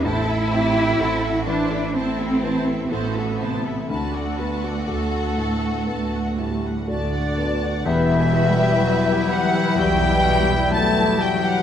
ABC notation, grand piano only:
X:1
M:4/4
L:1/8
Q:1/4=62
K:Em
V:1 name="Grand piano" clef=bass
A,, C [EA] E, C E, [EA] C, | D,, B, [FA] A,, B, A,, [FA] B, | (3E,, B,, G, (3F, G F, (3E,, B,, G, (3F, G F, |]